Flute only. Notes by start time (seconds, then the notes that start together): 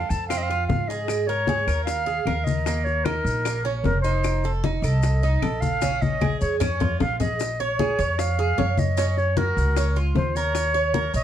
Already playing: F5
0.10 A5
0.28 F5
0.37 D#5
0.43 F5
0.67 F5
0.88 D#5
1.27 C#5
1.84 F5
2.44 D#5
2.84 C#5
3.05 A#4
3.83 A#4
4.01 C5
4.81 D#5
5.60 F5
6.01 D#5
6.41 C#5
6.60 C#5
7.00 F5
7.20 D#5
7.60 C#5
8.19 F5
8.79 D#5
9.18 C#5
9.37 A#4
10.16 C5
10.35 C#5
11.15 D#5